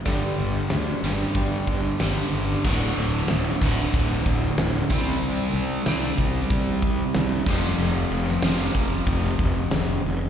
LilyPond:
<<
  \new Staff \with { instrumentName = "Overdriven electric guitar" } { \clef bass \time 4/4 \key d \minor \tempo 4 = 93 <g, d g>4. <g, d g>4. <g, d g>4 | <d, a, d>4. <d, a, d>2 <c g c'>8~ | <c g c'>4 <c g c'>2~ <c g c'>8 <f, c f>8~ | <f, c f>4 <f, c f>2~ <f, c f>8 r8 | }
  \new Staff \with { instrumentName = "Steel-string acoustic guitar" } { \clef bass \time 4/4 \key d \minor <g, d g>8 <g, d>8 <g, d>8 <g, d>8 <g, d g>8 <g, d>8 <g, d>8 <g, d>8 | r1 | r1 | r1 | }
  \new Staff \with { instrumentName = "Fingered electric bass" } { \clef bass \time 4/4 \key d \minor g,,8 g,,8 d,8 g,,8 g,,8 g,,8 g,,8 g,,8 | d,,8 d,,8 d,,8 d,,8 d,,8 d,,8 d,,8 c,8 | c,8 c,8 c,8 c,8 c,4 c,8 f,,8 | f,,8 f,,8 f,,8 f,,8 f,,8 f,,8 f,,8 f,,8 | }
  \new DrumStaff \with { instrumentName = "Drums" } \drummode { \time 4/4 <hho bd>4 <hho sn>8. sn16 <hho bd>8 bd8 <hho sn>4 | <cymc bd>4 <hho sn>8 bd8 <hho bd>8 bd8 <hho sn>8 bd8 | hho4 <hho sn>8 bd8 <hho bd>8 bd8 <hho sn>8 <cymc bd>8 | r8. sn16 <hho sn>8 bd8 <hho bd>8 bd8 <hho sn>4 | }
>>